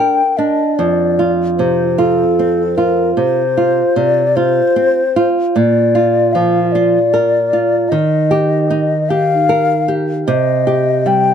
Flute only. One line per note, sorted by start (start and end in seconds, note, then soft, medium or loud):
0.00 0.39 G5 medium
0.37 0.78 D#5 soft
0.76 1.32 D5 soft
1.57 2.00 C5 soft
1.99 2.78 A4 soft
2.76 3.15 A#4 soft
3.16 3.98 C5 soft
3.97 4.37 D5 medium
4.36 5.28 C5 medium
5.55 6.34 D5 medium
6.33 6.74 F5 soft
6.72 7.91 D5 medium
7.89 9.11 D#5 medium
9.09 9.95 F5 medium
10.27 11.09 D#5 medium
11.07 11.34 G5 medium